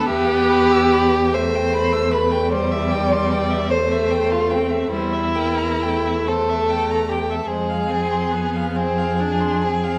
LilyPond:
<<
  \new Staff \with { instrumentName = "Violin" } { \time 12/8 \key c \major \tempo 4. = 48 e''16 g''16 b''16 e'''16 b''16 g''16 e''16 g''16 b''16 e'''16 b''16 g''16 c''16 e''16 g''16 c'''16 g''16 e''16 c''16 e''16 g''16 c'''16 g''16 e''16 | c''16 e''16 g''16 bes''16 g''16 e''16 c''16 e''16 g''16 bes''16 g''16 e''16 c''16 f''16 aes''16 c'''16 aes''16 f''16 c''16 f''16 aes''16 c'''16 aes''16 f''16 | }
  \new Staff \with { instrumentName = "Violin" } { \time 12/8 \key c \major g'4. c''4 b'8 d''4. c''8. f'16 c'8 | e'4. a'4 g'16 a'16 aes'4. aes'4. | }
  \new Staff \with { instrumentName = "Viola" } { \time 12/8 \key c \major b4. a4. g4. a4. | g8 bes8 a2 aes8 c'8 b8 c'8 d'8 c'8 | }
  \new Staff \with { instrumentName = "Cello" } { \clef bass \time 12/8 \key c \major e,1. | e,2. f,2. | }
>>